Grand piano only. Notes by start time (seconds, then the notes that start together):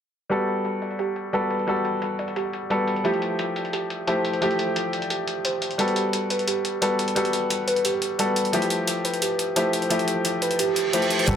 0.29 G3 B3 F#4 A4
1.33 G3 B3 F#4 A4
1.67 G3 B3 F#4 A4
2.70 G3 B3 F#4 A4
3.04 F3 A3 E4 G4
4.07 F3 A3 E4 G4
4.41 F3 A3 E4 G4
5.78 G3 B3 F#4 A4
6.81 G3 B3 F#4 A4
7.15 G3 B3 F#4 A4
8.19 G3 B3 F#4 A4
8.52 F3 A3 E4 G4
9.56 F3 A3 E4 G4
9.90 F3 A3 E4 G4
10.93 F3 A3 E4 G4
11.27 G3 B3 F#4 A4